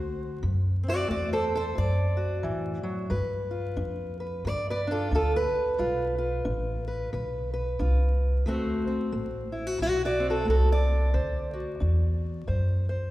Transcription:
0.00 0.41 D2 medium
0.00 0.38 A3 medium
0.00 0.43 C4 medium
0.00 0.41 F#4 soft
0.00 0.44 C5 medium
0.43 1.08 F#2 medium
0.43 1.05 D3 medium
0.83 3.11 C4 soft
0.88 1.10 F#4 medium
0.88 1.09 D5 medium
1.08 1.75 E2 medium
1.08 1.71 A3 medium
1.08 1.33 F#4 medium
1.08 1.33 D5 medium
1.33 1.44 A4 medium
1.33 1.55 C5 medium
1.55 1.64 A4 medium
1.55 1.78 C5 medium
1.75 2.42 F#2 medium
1.75 2.38 A2 medium
1.75 3.10 D5 medium
2.17 3.08 F#4 soft
2.43 3.09 A2 medium
2.43 2.83 E3 medium
2.83 3.11 F#3 medium
3.10 3.76 G2 medium
3.10 3.72 G3 medium
3.10 4.20 B4 soft
3.51 4.89 F4 soft
3.76 4.42 F2 medium
3.76 4.39 D4 medium
4.20 4.47 B4 soft
4.45 5.10 G2 medium
4.45 5.07 D3 medium
4.45 4.69 D5 medium
4.70 4.80 B4 medium
4.70 4.92 D5 medium
4.87 5.12 D4 medium
4.87 5.13 F4 medium
4.92 5.13 A4 medium
5.11 5.49 D2 medium
5.11 5.74 D4 medium
5.11 5.36 F4 medium
5.15 5.36 A4 medium
5.36 6.86 B4 medium
5.52 muted upright bass stroke soft
5.78 6.44 B1 medium
5.78 6.41 G3 medium
5.78 6.17 F4 medium
6.18 7.79 F4 soft
6.45 7.11 A1 medium
6.45 7.07 D4 medium
6.88 7.12 B4 soft
7.13 7.78 B1 medium
7.13 7.75 D3 medium
7.13 7.52 B4 soft
7.53 8.44 B4 medium
7.79 8.44 C2 medium
7.79 8.41 D4 medium
7.79 8.44 F4 medium
8.46 8.84 D2 medium
8.46 9.08 D3 medium
8.46 9.12 A3 medium
8.46 8.87 C4 medium
8.46 9.52 F#4 medium
8.46 9.83 C5 medium
8.86 10.19 C4 soft
8.86 muted upright bass stroke soft
9.12 9.78 A1 medium
9.12 9.75 A3 medium
9.52 9.67 E4 soft
9.67 9.80 F#4 soft
9.78 10.45 B1 medium
9.78 10.41 A2 medium
9.78 10.04 F#4 loud
9.83 10.04 D5 medium
10.05 10.26 F#4 medium
10.05 10.27 D5 medium
10.20 11.53 C4 medium
10.30 10.49 F#4 medium
10.30 10.49 A4 medium
10.45 11.13 C2 medium
10.45 11.08 A3 medium
10.50 10.71 F#4 medium
10.50 10.71 A4 medium
10.72 12.72 D5 loud
11.14 11.79 D2 medium
11.14 11.76 D3 medium
11.14 12.47 C5 soft
11.53 13.11 F#4 soft
11.80 12.47 E2 medium
11.80 12.43 D4 medium
12.47 13.11 F#2 medium
12.47 13.10 A2 medium
12.47 12.88 C5 soft
12.89 13.11 C5 soft

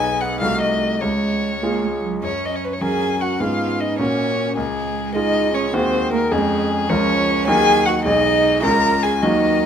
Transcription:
0.00 0.39 B1 medium
0.00 0.37 B3 soft
0.00 0.44 B3 medium
0.00 0.37 D#4 soft
0.00 0.38 G#4 soft
0.00 0.22 G#5 medium
0.21 0.40 F#5 medium
0.41 1.00 C2 medium
0.41 0.98 A3 soft
0.41 1.02 A3 soft
0.41 0.98 D#4 soft
0.41 0.99 F#4 soft
0.41 0.61 F5 medium
0.61 1.03 D#5 medium
1.01 1.61 C#2 soft
1.01 1.58 G#3 soft
1.01 2.03 C#5 medium
1.63 2.20 G#3 soft
1.63 1.85 A#3 medium
1.63 2.20 F4 soft
1.63 2.20 G#4 soft
1.83 2.03 G#3 soft
2.04 2.23 F#3 soft
2.23 2.80 F#2 soft
2.23 2.78 C#4 soft
2.23 2.47 C#5 medium
2.45 2.57 D#5 soft
2.55 2.66 C#5 soft
2.65 2.75 B4 soft
2.73 2.83 C#5 soft
2.81 3.36 F#3 soft
2.81 3.36 C#4 soft
2.81 3.20 G#4 soft
2.81 3.36 A#4 soft
2.81 3.23 G#5 medium
3.21 3.40 F#4 soft
3.21 3.42 F#5 medium
3.40 3.97 G#2 soft
3.40 3.95 B3 soft
3.40 3.95 C#4 soft
3.40 3.82 F4 soft
3.40 3.96 G#4 soft
3.40 3.82 F5 medium
3.80 4.01 D#4 medium
3.80 3.99 D#5 medium
3.99 4.56 A#2 soft
3.99 4.53 A#3 soft
3.99 4.57 C#4 soft
3.99 4.54 C#4 soft
3.99 4.54 F#4 soft
3.99 4.56 C#5 medium
4.57 5.14 C#2 soft
4.57 5.17 G#3 medium
4.57 5.14 G#4 medium
5.15 5.70 G#3 soft
5.15 5.54 D#4 medium
5.15 5.70 F4 soft
5.15 5.71 G#4 soft
5.15 5.56 D#5 medium
5.55 5.74 C#4 soft
5.55 5.75 C#5 medium
5.73 6.30 D#2 medium
5.73 6.28 G#3 soft
5.73 6.12 C4 medium
5.73 6.28 F#4 soft
5.73 6.29 G#4 soft
5.73 6.12 C5 medium
6.13 6.20 A#3 medium
6.13 6.33 A#4 medium
6.32 6.88 F2 medium
6.32 6.85 G#3 soft
6.32 6.89 G#3 medium
6.32 6.86 C#4 soft
6.32 6.91 G#4 medium
6.32 6.86 G#4 soft
6.89 7.46 C#2 medium
6.89 7.44 F3 soft
6.89 7.50 C#4 medium
6.89 7.44 F4 soft
6.89 7.44 A#4 soft
6.89 7.47 C#5 medium
7.47 8.04 D#2 medium
7.47 8.01 F#3 soft
7.47 8.02 D#4 soft
7.47 7.87 G#4 medium
7.47 8.02 A#4 soft
7.47 7.87 G#5 loud
7.86 7.95 F#4 medium
7.86 8.04 F#5 medium
8.05 8.62 B1 medium
8.05 8.59 G#3 soft
8.05 8.65 D#4 medium
8.05 8.60 D#4 soft
8.05 8.60 G#4 soft
8.05 8.62 D#5 medium
8.63 9.20 C#2 medium
8.63 9.18 G#3 soft
8.63 9.18 C#4 soft
8.63 9.19 F4 soft
8.63 9.03 A#4 medium
8.63 9.05 A#5 medium
9.03 9.11 G#4 medium
9.03 9.24 G#5 medium
9.22 9.66 D#2 medium
9.22 9.66 F#3 soft
9.22 9.66 A#3 soft
9.22 9.66 D#4 medium
9.22 9.66 F#4 soft
9.22 9.66 D#5 medium

